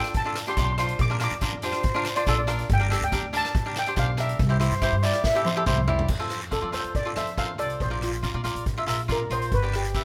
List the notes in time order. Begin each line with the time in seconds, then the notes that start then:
Already playing: D4 F4 A4 G5
0.04 cross-stick, closed hi-hat
0.14 A5, kick, closed hi-hat, long guiro
0.25 D4 F4 A4
0.35 cross-stick, closed hi-hat, short guiro
0.46 D4 F4 G4 C6, closed hi-hat
0.57 B1 D4 F4 G4 C6, kick, closed hi-hat, short guiro
0.65 C6
0.73 C6
0.78 D4 F4 C5 C6, cross-stick, closed hi-hat
0.86 C6, closed hi-hat
0.99 A#1 D6, kick, closed hi-hat, long guiro
1.10 D4 F4 A#4
1.20 D4 F4 A#4, cross-stick, closed hi-hat
1.24 D6
1.31 F2, closed hi-hat
1.41 D4 F4 A#4, kick, closed hi-hat, short guiro
1.53 F2
1.62 D4 F4 G4 C5, closed hi-hat, short guiro
1.73 cross-stick, closed hi-hat
1.83 kick, closed hi-hat, long guiro
1.94 D4 F4 A#4
2.05 cross-stick, closed hi-hat, short guiro
2.16 D4 F4 C5 D5, closed hi-hat
2.26 A#1 D4 F4 A4, kick, closed hi-hat, short guiro
2.37 D5
2.47 D4 F4 A#4, cross-stick, closed hi-hat
2.59 closed hi-hat
2.69 G1, kick, closed hi-hat, long guiro
2.74 G5
2.80 D4 G4 A#4
2.90 D4 G4 A4, cross-stick, closed hi-hat
3.01 D2 G5, closed hi-hat
3.12 D4 G4 A#4, kick, closed hi-hat, short guiro
3.23 D2
3.33 D4 G4 A#4 A5, closed hi-hat, short guiro
3.45 cross-stick, closed hi-hat
3.55 kick, closed hi-hat, long guiro
3.66 D4 G4 A#4
3.76 G5, cross-stick, closed hi-hat, short guiro
3.86 D4 G4 C5, closed hi-hat
3.96 B1 D4 G4 C5 F5, kick, closed hi-hat, short guiro
4.17 D4 G4 A#4 E5, cross-stick, closed hi-hat
4.29 closed hi-hat
4.39 C2, kick, closed hi-hat, long guiro
4.49 E4 G4 C5
4.60 E4 G4 C5, cross-stick, closed hi-hat
4.71 G2, closed hi-hat
4.82 E4 G4 C5, kick, closed hi-hat, short guiro
4.92 G2
5.03 E4 G4 D5, closed hi-hat, short guiro
5.13 cross-stick, closed hi-hat
5.24 E5, kick, snare, long guiro
5.35 E4 G4 A4
5.45 C5, high tom, short guiro
5.56 E4 G4 A4
5.66 C2 E4 G4 C5, kick, mid tom, short guiro
5.77 mid tom
5.88 E4 G4 D5, floor tom
5.99 floor tom
6.08 F2, kick, crash, long guiro
6.19 F4 A4 C5
6.30 cross-stick, closed hi-hat
6.41 closed hi-hat
6.51 F4 A4 D5, kick, closed hi-hat, short guiro
6.62 F3 F4 A4 D5
6.72 F2 F4 A4 C5, closed hi-hat, short guiro
6.84 F2, closed hi-hat
6.95 D5, kick, closed hi-hat, long guiro
7.05 F4 A4 D5
7.16 F2 F4 A4 C5 E5, cross-stick, closed hi-hat, short guiro
7.27 closed hi-hat
7.37 F4 A4 C5 F5, kick, closed hi-hat, short guiro
7.58 C2 F4 A4 C5 D5, closed hi-hat
7.70 closed hi-hat
7.80 A#1 C5, kick, closed hi-hat, long guiro
7.90 F4 A#4 D5
8.02 F4, cross-stick, closed hi-hat
8.13 closed hi-hat
8.22 F4 A#4 D5, kick, closed hi-hat, short guiro
8.34 A#2 F4 A#4 D5
8.44 A#1 F4 A#4 D5, closed hi-hat, short guiro
8.55 A#1, closed hi-hat
8.66 kick, closed hi-hat, long guiro
8.77 F4 A#4 E5
8.87 A#1 F4 A#4 E5, cross-stick, closed hi-hat, short guiro
8.99 closed hi-hat
9.08 F4 A#4 D5, kick, closed hi-hat, short guiro
9.30 A#1 F4 A#4 C5, closed hi-hat
9.42 closed hi-hat
9.52 G1 B4, kick, closed hi-hat, long guiro
9.63 G4 B4 D5
9.73 G4, cross-stick, closed hi-hat
9.85 closed hi-hat
9.94 G4 B4 E5, kick, closed hi-hat, short guiro